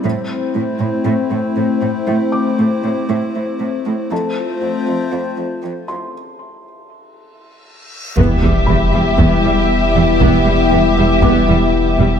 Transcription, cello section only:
X:1
M:4/4
L:1/8
Q:1/4=118
K:Ephr
V:1 name="Cello section" clef=bass
A,, z A,, A,, A,, A,, A,, A,, | A,, z A,, A,, A,, A,, A,, A,, | F,, z F,, F,, F,, F,, F,, F,, | z8 |
E,, E,, E,, E,, E,, E,, z E,, | E,, E,, E,, E,, E,, E,, z E,, |]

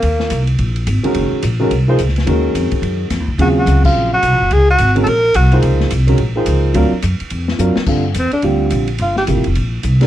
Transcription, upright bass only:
X:1
M:4/4
L:1/8
Q:"Swing" 1/4=214
K:Ebdor
V:1 name="Upright bass" clef=bass
E,,2 C,,2 B,,,2 A,,, z | G,,, z B,,,2 C,,2 D,,2 | E,,2 F,, z G,,2 (3F,, E,, D,, | E,,2 D,,2 B,,,2 (3C,, B,,, G,,, |
D,,2 A,,,2 B,,,2 C,,2 | D,,2 C,,2 B,,,2 D,,2 | =D,, z ^F,, z ^E,,2 F,, z | [K:Gdor] G,,2 E,, z D,,2 B,,,2 |
G,,,2 (3A,,, G,,, F,,, B,,,2 C,,2 |]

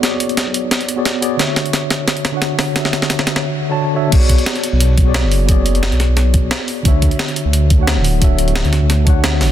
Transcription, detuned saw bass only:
X:1
M:4/4
L:1/16
Q:"Swing 16ths" 1/4=176
K:Bdor
V:1 name="Detuned saw bass" clef=bass
F,,,4- F,,, B,,,2 B,,,4- B,,, z4 | D,,3 z4 D,,6 D,,,3- | D,,,4- D,,, D,,2 D,, z8 | B,,,3 z4 B,,,6 F,,,3- |
F,,,4- F,,, B,,,2 B,,,4- B,,, z4 | D,,3 z4 D,,6 D,,,3- | D,,,4- D,,, D,,2 D,,6- D,, A,,,2 |]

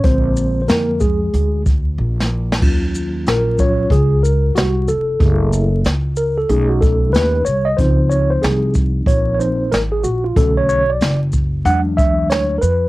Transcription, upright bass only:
X:1
M:4/4
L:1/8
Q:"Swing 16ths" 1/4=93
K:Ebdor
V:1 name="Upright bass" clef=bass
B,,,2 F,,2 =D,,2 B,,,2 | E,,2 B,,,2 D,,2 C,, F,,, | G,,,2 D,,2 =B,,,2 ^D,, C,, | D,,2 C,,2 B,,,2 A,,, B,,, |
=B,,,2 ^F,,,2 =E,,2 =D,, =F,, |]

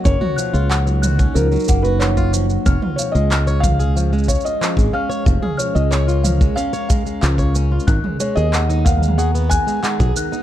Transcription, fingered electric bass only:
X:1
M:4/4
L:1/16
Q:1/4=92
K:C#mix
V:1 name="Fingered electric bass" clef=bass
F,,, z2 C,,4 z C,, z F,,,4- F,,, z | E,,, z2 C,,6- C,, z3 G,,, z2 | E,,, z2 C,,4 z4 z C,,3 z | G,,, z2 D,,6- D,, z3 B,,, z2 |]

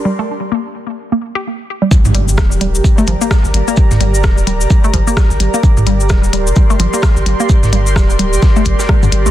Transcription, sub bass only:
X:1
M:4/4
L:1/16
Q:"Swing 16ths" 1/4=129
K:Gm
V:1 name="Sub bass" clef=bass
z16 | z G,,, G,,,2 D,,,3 G,,, z2 G,,, z2 G,,, G,,, z | z G,,, G,,,2 D,,,3 G,,, z2 G,,, z2 G,,, G,,, z | z G,,, G,,,2 D,,,3 G,,, z2 G,,, z2 G,,, G,,, z |
z G,,, G,,,2 D,,,3 G,,, z2 G,,, z2 G,, G,,, G,, |]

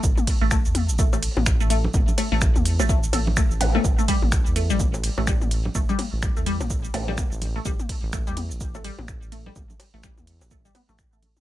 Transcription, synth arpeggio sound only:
X:1
M:4/4
L:1/16
Q:"Swing 16ths" 1/4=126
K:C
V:1 name="Synth arpeggio sound"
z3 A, A, z3 A, A, z3 A, A, z | z2 A, A, z3 A, A, z A z A, z B, A, | z A, G, z3 A, G, z3 A, G, z3 | A, G, z3 A, G, z3 A, G, z3 A, |
G, z3 A, G, z3 A, G, z3 A, G, | z3 A, G, z3 A, G, B, A, z A, z2 |]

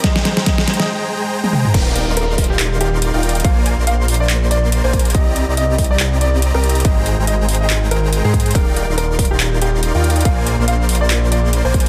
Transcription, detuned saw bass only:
X:1
M:4/4
L:1/16
Q:"Swing 16ths" 1/4=141
K:Eb
V:1 name="Detuned saw bass" clef=bass
z16 | E,,,3 E,,,8- E,,,2 E,,,3 | B,,,3 B,,,8- B,,,2 B,,,3 | C,,3 C,,8- C,,2 C,,3 |
A,,,3 A,,,8- A,,,2 A,,3 | E,,,3 E,,,8- E,,,2 E,,3 | B,,,3 B,,,8- B,,,2 B,,,3 |]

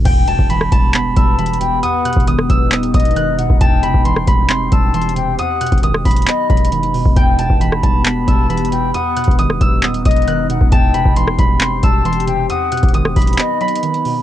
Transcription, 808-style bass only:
X:1
M:4/4
L:1/16
Q:1/4=135
K:Em
V:1 name="808-style bass" clef=bass
E,,,3 E,,,3 E,,,4 E,,,6 | z3 E,,,3 E,,,2 ^D,,,2 E,,,4- E,,, D,,, | E,,,3 E,,,3 E,,,4 E,,,6 | z3 E,,,3 E,,,2 z2 E,,,4- E,,, E,,, |
E,,,3 E,,,3 E,,,4 E,,,6 | z3 E,,,3 E,,,2 ^D,,,2 E,,,4- E,,, D,,, | E,,,3 E,,,3 E,,,4 E,,,6 | z3 E,,,3 E,,,2 z8 |]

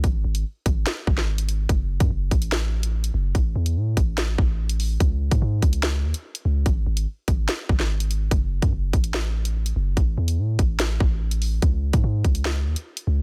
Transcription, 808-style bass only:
X:1
M:4/4
L:1/16
Q:1/4=145
K:C#m
V:1 name="808-style bass" clef=bass
G,,,2 G,,,2 z2 G,,,2 z2 G,,,6 | F,,,3 F,, F,,,2 A,,,8 F,,,2 | A,,,2 E,,2 A,,2 A,,,4 A,,,6 | C,,3 G,, G,,2 C,,4 D,, z3 C,,2 |
G,,,2 G,,,2 z2 G,,,2 z2 G,,,6 | F,,,3 F,, F,,,2 A,,,8 F,,,2 | A,,,2 E,,2 A,,2 A,,,4 A,,,6 | C,,3 G,, G,,2 C,,4 D,, z3 C,,2 |]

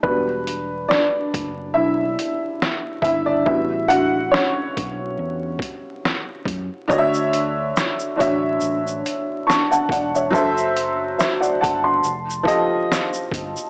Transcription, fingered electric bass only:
X:1
M:4/4
L:1/16
Q:"Swing 16ths" 1/4=70
K:D
V:1 name="Fingered electric bass" clef=bass
E,,,4 z2 F,,,2 B,,,2 z4 G,,,2 | A,,,4 z2 B,,,2 E,,2 z4 F,, z | D,,4 z2 A,,,2 A,,,2 z4 E,,,2 | F,,,4 z2 G,,,2 =F,,,2 z4 G,,, z |]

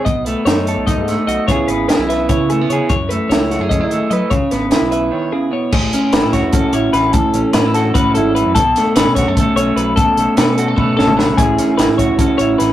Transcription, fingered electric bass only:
X:1
M:7/8
L:1/16
Q:1/4=148
K:Alyd
V:1 name="Fingered electric bass" clef=bass
B,,, B,,,2 z F,,3 B,,,2 G,,2 z B,,, z | C,, z G,,,2 z B,,,3 C,4 C, z | F,, F,,2 z C,,3 F,,2 D,2 z F, z | C,, z G,,,2 z B,,,3 z6 |
A,,,2 z2 G,,, A,,2 E,, A,,, z A,,,2 A,,,2 | z2 A,,, z A,,4 A,,2 G,,,3 F,, | B,,,2 z2 A,,, B,,2 F,, B,,, z B,,,2 B,,,2 | z2 B,,, z B,,4 B,,2 A,,,3 B,,, |
A,,,2 z2 G,,, A,,2 E,, A,,, z A,,,2 A,,,2 |]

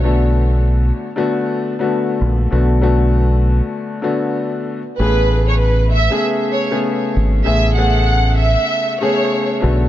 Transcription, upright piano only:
X:1
M:4/4
L:1/16
Q:"Swing 16ths" 1/4=97
K:A
V:1 name="Upright piano"
[D,A,B,F]6 z [D,A,B,F]4 [D,A,B,F]4- [D,A,B,F] | [D,A,B,F]2 [D,A,B,F]6- [D,A,B,F] z [D,A,B,F]4- [D,A,B,F] z | [C,A,B,G]6 z [C,A,B,G]4 [C,A,B,G]4- [C,A,B,G] | [C,A,B,G]2 [C,A,B,G]6- [C,A,B,G] z [C,A,B,G]4 [D,A,B,F] z |]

